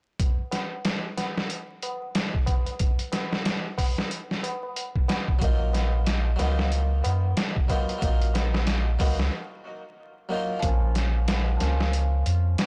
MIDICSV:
0, 0, Header, 1, 5, 480
1, 0, Start_track
1, 0, Tempo, 652174
1, 144, Time_signature, 4, 2, 24, 8
1, 9318, End_track
2, 0, Start_track
2, 0, Title_t, "Harpsichord"
2, 0, Program_c, 0, 6
2, 3965, Note_on_c, 0, 54, 69
2, 3985, Note_on_c, 0, 58, 68
2, 4003, Note_on_c, 0, 63, 69
2, 4025, Note_on_c, 0, 65, 83
2, 4671, Note_off_c, 0, 54, 0
2, 4681, Note_off_c, 0, 58, 0
2, 4682, Note_on_c, 0, 54, 71
2, 4690, Note_off_c, 0, 63, 0
2, 4701, Note_off_c, 0, 65, 0
2, 4702, Note_on_c, 0, 58, 68
2, 4722, Note_on_c, 0, 63, 68
2, 4744, Note_on_c, 0, 65, 85
2, 5630, Note_off_c, 0, 54, 0
2, 5640, Note_off_c, 0, 58, 0
2, 5650, Note_off_c, 0, 63, 0
2, 5655, Note_on_c, 0, 54, 68
2, 5660, Note_off_c, 0, 65, 0
2, 5663, Note_on_c, 0, 58, 61
2, 5675, Note_on_c, 0, 63, 57
2, 5684, Note_on_c, 0, 65, 71
2, 5867, Note_off_c, 0, 54, 0
2, 5876, Note_on_c, 0, 54, 76
2, 5880, Note_off_c, 0, 58, 0
2, 5886, Note_off_c, 0, 63, 0
2, 5890, Note_off_c, 0, 65, 0
2, 5898, Note_on_c, 0, 58, 71
2, 5918, Note_on_c, 0, 63, 67
2, 5939, Note_on_c, 0, 65, 82
2, 6587, Note_off_c, 0, 54, 0
2, 6598, Note_off_c, 0, 58, 0
2, 6607, Note_off_c, 0, 63, 0
2, 6615, Note_on_c, 0, 54, 80
2, 6618, Note_off_c, 0, 65, 0
2, 6625, Note_on_c, 0, 58, 74
2, 6635, Note_on_c, 0, 63, 74
2, 6648, Note_on_c, 0, 66, 83
2, 6731, Note_off_c, 0, 54, 0
2, 6736, Note_off_c, 0, 58, 0
2, 6741, Note_off_c, 0, 63, 0
2, 6748, Note_off_c, 0, 66, 0
2, 7573, Note_on_c, 0, 54, 74
2, 7582, Note_on_c, 0, 58, 66
2, 7594, Note_on_c, 0, 63, 68
2, 7604, Note_on_c, 0, 65, 77
2, 7795, Note_off_c, 0, 54, 0
2, 7798, Note_on_c, 0, 53, 75
2, 7800, Note_off_c, 0, 58, 0
2, 7805, Note_off_c, 0, 63, 0
2, 7810, Note_off_c, 0, 65, 0
2, 7821, Note_on_c, 0, 58, 68
2, 7839, Note_on_c, 0, 61, 64
2, 7861, Note_on_c, 0, 65, 83
2, 8507, Note_off_c, 0, 53, 0
2, 8517, Note_on_c, 0, 53, 75
2, 8519, Note_off_c, 0, 58, 0
2, 8528, Note_off_c, 0, 61, 0
2, 8538, Note_on_c, 0, 58, 70
2, 8539, Note_off_c, 0, 65, 0
2, 8558, Note_on_c, 0, 61, 70
2, 8580, Note_on_c, 0, 65, 83
2, 9318, Note_off_c, 0, 53, 0
2, 9318, Note_off_c, 0, 58, 0
2, 9318, Note_off_c, 0, 61, 0
2, 9318, Note_off_c, 0, 65, 0
2, 9318, End_track
3, 0, Start_track
3, 0, Title_t, "Sub bass"
3, 0, Program_c, 1, 38
3, 3990, Note_on_c, 1, 34, 93
3, 4688, Note_off_c, 1, 34, 0
3, 4710, Note_on_c, 1, 37, 78
3, 5168, Note_off_c, 1, 37, 0
3, 5190, Note_on_c, 1, 42, 93
3, 5404, Note_off_c, 1, 42, 0
3, 5906, Note_on_c, 1, 34, 87
3, 6606, Note_off_c, 1, 34, 0
3, 6626, Note_on_c, 1, 37, 79
3, 6842, Note_off_c, 1, 37, 0
3, 7824, Note_on_c, 1, 34, 90
3, 8525, Note_off_c, 1, 34, 0
3, 8546, Note_on_c, 1, 37, 75
3, 9006, Note_off_c, 1, 37, 0
3, 9026, Note_on_c, 1, 41, 90
3, 9241, Note_off_c, 1, 41, 0
3, 9318, End_track
4, 0, Start_track
4, 0, Title_t, "Tabla"
4, 145, Note_on_c, 9, 60, 35
4, 219, Note_off_c, 9, 60, 0
4, 378, Note_on_c, 9, 60, 68
4, 451, Note_off_c, 9, 60, 0
4, 520, Note_on_c, 9, 60, 41
4, 593, Note_off_c, 9, 60, 0
4, 622, Note_on_c, 9, 60, 32
4, 695, Note_off_c, 9, 60, 0
4, 864, Note_on_c, 9, 60, 72
4, 938, Note_off_c, 9, 60, 0
4, 1003, Note_on_c, 9, 60, 43
4, 1077, Note_off_c, 9, 60, 0
4, 1101, Note_on_c, 9, 60, 31
4, 1174, Note_off_c, 9, 60, 0
4, 1347, Note_on_c, 9, 60, 76
4, 1421, Note_off_c, 9, 60, 0
4, 1488, Note_on_c, 9, 60, 39
4, 1561, Note_off_c, 9, 60, 0
4, 1582, Note_on_c, 9, 60, 33
4, 1655, Note_off_c, 9, 60, 0
4, 1813, Note_on_c, 9, 60, 72
4, 1886, Note_off_c, 9, 60, 0
4, 1960, Note_on_c, 9, 60, 45
4, 2034, Note_off_c, 9, 60, 0
4, 2062, Note_on_c, 9, 60, 35
4, 2136, Note_off_c, 9, 60, 0
4, 2295, Note_on_c, 9, 60, 79
4, 2369, Note_off_c, 9, 60, 0
4, 2440, Note_on_c, 9, 60, 51
4, 2514, Note_off_c, 9, 60, 0
4, 2542, Note_on_c, 9, 60, 36
4, 2615, Note_off_c, 9, 60, 0
4, 2778, Note_on_c, 9, 60, 82
4, 2852, Note_off_c, 9, 60, 0
4, 2929, Note_on_c, 9, 60, 45
4, 3003, Note_off_c, 9, 60, 0
4, 3024, Note_on_c, 9, 60, 34
4, 3098, Note_off_c, 9, 60, 0
4, 3262, Note_on_c, 9, 60, 88
4, 3336, Note_off_c, 9, 60, 0
4, 3409, Note_on_c, 9, 60, 47
4, 3482, Note_off_c, 9, 60, 0
4, 3510, Note_on_c, 9, 60, 34
4, 3584, Note_off_c, 9, 60, 0
4, 3741, Note_on_c, 9, 60, 85
4, 3815, Note_off_c, 9, 60, 0
4, 3891, Note_on_c, 9, 60, 43
4, 3964, Note_off_c, 9, 60, 0
4, 3989, Note_on_c, 9, 60, 40
4, 4062, Note_off_c, 9, 60, 0
4, 4219, Note_on_c, 9, 60, 86
4, 4292, Note_off_c, 9, 60, 0
4, 4361, Note_on_c, 9, 60, 45
4, 4434, Note_off_c, 9, 60, 0
4, 4462, Note_on_c, 9, 60, 34
4, 4536, Note_off_c, 9, 60, 0
4, 4704, Note_on_c, 9, 60, 85
4, 4778, Note_off_c, 9, 60, 0
4, 4850, Note_on_c, 9, 60, 52
4, 4923, Note_off_c, 9, 60, 0
4, 4948, Note_on_c, 9, 60, 34
4, 5021, Note_off_c, 9, 60, 0
4, 5180, Note_on_c, 9, 60, 91
4, 5253, Note_off_c, 9, 60, 0
4, 5329, Note_on_c, 9, 60, 49
4, 5402, Note_off_c, 9, 60, 0
4, 5428, Note_on_c, 9, 60, 38
4, 5502, Note_off_c, 9, 60, 0
4, 5665, Note_on_c, 9, 60, 80
4, 5738, Note_off_c, 9, 60, 0
4, 5811, Note_on_c, 9, 60, 54
4, 5885, Note_off_c, 9, 60, 0
4, 5907, Note_on_c, 9, 60, 37
4, 5981, Note_off_c, 9, 60, 0
4, 6139, Note_on_c, 9, 60, 80
4, 6212, Note_off_c, 9, 60, 0
4, 6285, Note_on_c, 9, 60, 47
4, 6358, Note_off_c, 9, 60, 0
4, 6384, Note_on_c, 9, 60, 39
4, 6458, Note_off_c, 9, 60, 0
4, 6629, Note_on_c, 9, 60, 91
4, 6703, Note_off_c, 9, 60, 0
4, 6765, Note_on_c, 9, 60, 47
4, 6839, Note_off_c, 9, 60, 0
4, 8304, Note_on_c, 9, 60, 75
4, 8377, Note_off_c, 9, 60, 0
4, 9264, Note_on_c, 9, 60, 75
4, 9318, Note_off_c, 9, 60, 0
4, 9318, End_track
5, 0, Start_track
5, 0, Title_t, "Drums"
5, 143, Note_on_c, 9, 36, 99
5, 143, Note_on_c, 9, 42, 78
5, 217, Note_off_c, 9, 36, 0
5, 217, Note_off_c, 9, 42, 0
5, 384, Note_on_c, 9, 42, 58
5, 388, Note_on_c, 9, 38, 31
5, 458, Note_off_c, 9, 42, 0
5, 461, Note_off_c, 9, 38, 0
5, 623, Note_on_c, 9, 42, 68
5, 627, Note_on_c, 9, 38, 97
5, 697, Note_off_c, 9, 42, 0
5, 701, Note_off_c, 9, 38, 0
5, 865, Note_on_c, 9, 42, 62
5, 869, Note_on_c, 9, 38, 32
5, 939, Note_off_c, 9, 42, 0
5, 943, Note_off_c, 9, 38, 0
5, 1012, Note_on_c, 9, 38, 50
5, 1086, Note_off_c, 9, 38, 0
5, 1102, Note_on_c, 9, 42, 78
5, 1176, Note_off_c, 9, 42, 0
5, 1343, Note_on_c, 9, 42, 57
5, 1416, Note_off_c, 9, 42, 0
5, 1581, Note_on_c, 9, 42, 72
5, 1585, Note_on_c, 9, 38, 102
5, 1655, Note_off_c, 9, 42, 0
5, 1658, Note_off_c, 9, 38, 0
5, 1725, Note_on_c, 9, 36, 74
5, 1799, Note_off_c, 9, 36, 0
5, 1819, Note_on_c, 9, 42, 57
5, 1822, Note_on_c, 9, 36, 82
5, 1892, Note_off_c, 9, 42, 0
5, 1895, Note_off_c, 9, 36, 0
5, 1962, Note_on_c, 9, 42, 35
5, 2035, Note_off_c, 9, 42, 0
5, 2057, Note_on_c, 9, 42, 75
5, 2062, Note_on_c, 9, 36, 104
5, 2130, Note_off_c, 9, 42, 0
5, 2135, Note_off_c, 9, 36, 0
5, 2201, Note_on_c, 9, 42, 41
5, 2275, Note_off_c, 9, 42, 0
5, 2301, Note_on_c, 9, 42, 60
5, 2304, Note_on_c, 9, 38, 49
5, 2374, Note_off_c, 9, 42, 0
5, 2378, Note_off_c, 9, 38, 0
5, 2448, Note_on_c, 9, 38, 51
5, 2521, Note_off_c, 9, 38, 0
5, 2542, Note_on_c, 9, 42, 67
5, 2545, Note_on_c, 9, 38, 95
5, 2615, Note_off_c, 9, 42, 0
5, 2619, Note_off_c, 9, 38, 0
5, 2784, Note_on_c, 9, 36, 82
5, 2786, Note_on_c, 9, 46, 73
5, 2858, Note_off_c, 9, 36, 0
5, 2859, Note_off_c, 9, 46, 0
5, 2931, Note_on_c, 9, 38, 48
5, 3005, Note_off_c, 9, 38, 0
5, 3025, Note_on_c, 9, 42, 76
5, 3098, Note_off_c, 9, 42, 0
5, 3173, Note_on_c, 9, 38, 35
5, 3247, Note_off_c, 9, 38, 0
5, 3267, Note_on_c, 9, 42, 62
5, 3340, Note_off_c, 9, 42, 0
5, 3507, Note_on_c, 9, 42, 74
5, 3580, Note_off_c, 9, 42, 0
5, 3647, Note_on_c, 9, 36, 76
5, 3721, Note_off_c, 9, 36, 0
5, 3747, Note_on_c, 9, 42, 59
5, 3751, Note_on_c, 9, 38, 100
5, 3821, Note_off_c, 9, 42, 0
5, 3825, Note_off_c, 9, 38, 0
5, 3887, Note_on_c, 9, 36, 83
5, 3961, Note_off_c, 9, 36, 0
5, 3985, Note_on_c, 9, 36, 97
5, 3985, Note_on_c, 9, 42, 82
5, 4058, Note_off_c, 9, 36, 0
5, 4059, Note_off_c, 9, 42, 0
5, 4228, Note_on_c, 9, 42, 60
5, 4231, Note_on_c, 9, 38, 35
5, 4301, Note_off_c, 9, 42, 0
5, 4305, Note_off_c, 9, 38, 0
5, 4464, Note_on_c, 9, 42, 77
5, 4467, Note_on_c, 9, 38, 98
5, 4537, Note_off_c, 9, 42, 0
5, 4541, Note_off_c, 9, 38, 0
5, 4705, Note_on_c, 9, 42, 61
5, 4709, Note_on_c, 9, 38, 34
5, 4779, Note_off_c, 9, 42, 0
5, 4782, Note_off_c, 9, 38, 0
5, 4850, Note_on_c, 9, 38, 49
5, 4924, Note_off_c, 9, 38, 0
5, 4944, Note_on_c, 9, 42, 74
5, 5017, Note_off_c, 9, 42, 0
5, 5185, Note_on_c, 9, 42, 65
5, 5258, Note_off_c, 9, 42, 0
5, 5422, Note_on_c, 9, 42, 78
5, 5426, Note_on_c, 9, 38, 98
5, 5496, Note_off_c, 9, 42, 0
5, 5500, Note_off_c, 9, 38, 0
5, 5567, Note_on_c, 9, 36, 74
5, 5640, Note_off_c, 9, 36, 0
5, 5663, Note_on_c, 9, 42, 58
5, 5664, Note_on_c, 9, 36, 80
5, 5737, Note_off_c, 9, 36, 0
5, 5737, Note_off_c, 9, 42, 0
5, 5808, Note_on_c, 9, 42, 40
5, 5882, Note_off_c, 9, 42, 0
5, 5904, Note_on_c, 9, 36, 99
5, 5904, Note_on_c, 9, 42, 80
5, 5978, Note_off_c, 9, 36, 0
5, 5978, Note_off_c, 9, 42, 0
5, 6047, Note_on_c, 9, 42, 41
5, 6121, Note_off_c, 9, 42, 0
5, 6146, Note_on_c, 9, 42, 68
5, 6149, Note_on_c, 9, 38, 49
5, 6219, Note_off_c, 9, 42, 0
5, 6223, Note_off_c, 9, 38, 0
5, 6289, Note_on_c, 9, 38, 55
5, 6363, Note_off_c, 9, 38, 0
5, 6379, Note_on_c, 9, 42, 73
5, 6383, Note_on_c, 9, 38, 101
5, 6453, Note_off_c, 9, 42, 0
5, 6457, Note_off_c, 9, 38, 0
5, 6622, Note_on_c, 9, 46, 72
5, 6623, Note_on_c, 9, 36, 90
5, 6696, Note_off_c, 9, 36, 0
5, 6696, Note_off_c, 9, 46, 0
5, 6767, Note_on_c, 9, 38, 52
5, 6840, Note_off_c, 9, 38, 0
5, 7820, Note_on_c, 9, 42, 85
5, 7822, Note_on_c, 9, 36, 102
5, 7893, Note_off_c, 9, 42, 0
5, 7895, Note_off_c, 9, 36, 0
5, 8061, Note_on_c, 9, 42, 66
5, 8064, Note_on_c, 9, 38, 36
5, 8134, Note_off_c, 9, 42, 0
5, 8138, Note_off_c, 9, 38, 0
5, 8300, Note_on_c, 9, 42, 81
5, 8304, Note_on_c, 9, 38, 102
5, 8374, Note_off_c, 9, 42, 0
5, 8377, Note_off_c, 9, 38, 0
5, 8541, Note_on_c, 9, 42, 68
5, 8544, Note_on_c, 9, 38, 37
5, 8614, Note_off_c, 9, 42, 0
5, 8618, Note_off_c, 9, 38, 0
5, 8689, Note_on_c, 9, 38, 54
5, 8762, Note_off_c, 9, 38, 0
5, 8783, Note_on_c, 9, 42, 84
5, 8857, Note_off_c, 9, 42, 0
5, 9023, Note_on_c, 9, 42, 65
5, 9097, Note_off_c, 9, 42, 0
5, 9261, Note_on_c, 9, 42, 74
5, 9264, Note_on_c, 9, 38, 104
5, 9318, Note_off_c, 9, 38, 0
5, 9318, Note_off_c, 9, 42, 0
5, 9318, End_track
0, 0, End_of_file